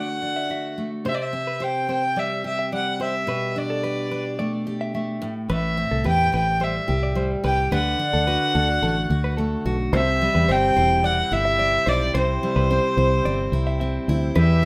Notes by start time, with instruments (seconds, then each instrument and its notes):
Already playing: steel-string acoustic guitar D3 A3 D4 F#4, violin F#5
0.22 steel-string acoustic guitar D4
0.36 clean electric guitar E5
0.50 steel-string acoustic guitar F#4, clean electric guitar E5
0.78 steel-string acoustic guitar A3
1.05 steel-string acoustic guitar C3, clean electric guitar C5, violin E5
1.14 violin D5
1.22 violin E5
1.33 steel-string acoustic guitar C4
1.47 clean electric guitar B4
1.60 steel-string acoustic guitar G4, clean electric guitar C5, violin G5
1.89 steel-string acoustic guitar C4, clean electric guitar C5, violin G5
2.16 steel-string acoustic guitar G3, clean electric guitar D5, violin E5
2.44 steel-string acoustic guitar G4, violin E5
2.59 clean electric guitar E5
2.72 steel-string acoustic guitar G3, clean electric guitar D5, violin F#5
3.00 steel-string acoustic guitar G4, clean electric guitar C5, violin E5
3.27 steel-string acoustic guitar B2, clean electric guitar B4
3.56 steel-string acoustic guitar D4, violin D5
3.70 clean electric guitar A4
3.83 steel-string acoustic guitar G4, clean electric guitar B4
4.11 steel-string acoustic guitar D4, clean electric guitar B4
4.39 steel-string acoustic guitar A3, clean electric guitar D5
4.67 steel-string acoustic guitar G4
4.81 clean electric guitar E5
4.95 steel-string acoustic guitar A3, clean electric guitar E5
5.22 steel-string acoustic guitar A2
5.49 fingered electric bass A1, steel-string acoustic guitar A2, clean electric guitar B4, violin E5
5.77 steel-string acoustic guitar C4
5.91 fingered electric bass C2, clean electric guitar A4
6.04 fingered electric bass E2, steel-string acoustic guitar G4, clean electric guitar B4, violin G5
6.32 fingered electric bass A1, steel-string acoustic guitar C4, clean electric guitar B4, violin G5
6.60 steel-string acoustic guitar G3, clean electric guitar C5, violin E5
6.88 fingered electric bass C2, steel-string acoustic guitar G4
7.03 clean electric guitar D5
7.15 steel-string acoustic guitar G3, clean electric guitar C5
7.44 fingered electric bass C2, steel-string acoustic guitar G4, clean electric guitar B4, violin G5
7.72 fingered electric bass D2, steel-string acoustic guitar D3, clean electric guitar B4, violin F#5
7.99 steel-string acoustic guitar D4
8.13 fingered electric bass D2, clean electric guitar A4
8.27 steel-string acoustic guitar F#4, clean electric guitar B4
8.55 fingered electric bass D2, steel-string acoustic guitar D4, clean electric guitar A4
8.82 fingered electric bass A1, steel-string acoustic guitar A3, clean electric guitar A4
9.10 fingered electric bass D2, steel-string acoustic guitar F#4
9.24 clean electric guitar B4
9.37 steel-string acoustic guitar A3, clean electric guitar A4
9.66 fingered electric bass B1, steel-string acoustic guitar F#4
9.93 fingered electric bass C2, steel-string acoustic guitar C3, tonewheel organ C3 C4 G4 E5 G5, clean electric guitar C5, violin E5
10.21 steel-string acoustic guitar G3
10.35 fingered electric bass E2, clean electric guitar B4
10.49 fingered electric bass G1, steel-string acoustic guitar C4, clean electric guitar C5, violin G5
10.76 fingered electric bass E1, steel-string acoustic guitar E4, clean electric guitar C5
11.04 steel-string acoustic guitar C4, clean electric guitar D5, violin F#5
11.32 fingered electric bass G1, steel-string acoustic guitar E4, violin E5
11.45 clean electric guitar E5
11.59 steel-string acoustic guitar C4, clean electric guitar D5
11.86 fingered electric bass B1, steel-string acoustic guitar E4, clean electric guitar C5, violin D5
12.14 fingered electric bass C2, steel-string acoustic guitar C3, clean electric guitar C5, violin C5
12.43 steel-string acoustic guitar G3
12.56 fingered electric bass C2, clean electric guitar B4
12.70 steel-string acoustic guitar C4, clean electric guitar C5
12.97 fingered electric bass C2, steel-string acoustic guitar E4, clean electric guitar C5
13.25 fingered electric bass G1, steel-string acoustic guitar C4, clean electric guitar D5
13.52 fingered electric bass C2, steel-string acoustic guitar E4
13.67 clean electric guitar E5
13.80 steel-string acoustic guitar C4, clean electric guitar E5
14.08 fingered electric bass D2, steel-string acoustic guitar E4
14.35 steel-string acoustic guitar E2, fingered electric bass E2, tonewheel organ E3 B3 D5 G5, clean electric guitar B4, violin E5